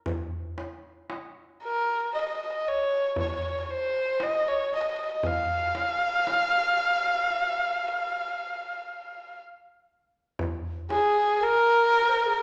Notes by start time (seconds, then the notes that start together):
0.06 darbuka dum
0.58 darbuka tek
1.10 darbuka tek
1.64 A#4
2.14 D#5
2.20 D#5
2.28 D#5
2.36 D#5
2.45 D#5
2.53 D#5
2.68 C#5
3.16 C#5, darbuka dum
3.28 C#5
3.35 C#5
3.43 C#5
3.50 C#5
3.59 C#5
3.64 C#5
3.69 C5, darbuka ka
4.20 D#5, darbuka tek
4.48 C#5
4.72 D#5, darbuka ka
4.82 D#5
4.90 D#5
4.97 D#5
5.05 D#5
5.12 D#5
5.23 F5, darbuka dum
5.75 darbuka tek
6.27 darbuka tek
7.30 darbuka ka
10.39 darbuka dum
10.90 G#4, darbuka tek
11.40 A#4
12.09 C5
12.18 A#4
12.26 G#4
12.34 A#4